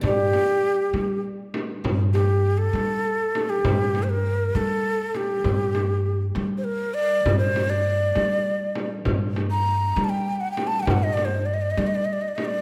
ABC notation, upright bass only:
X:1
M:6/8
L:1/8
Q:3/8=66
K:Gm
V:1 name="Upright bass" clef=bass
G,, z2 G,3 | G,,3 G,3 | G,,3 G,3 | G,,3 G,3 |
G,,3 G,3 | G,,3 G,3 | G,,3 G,3 |]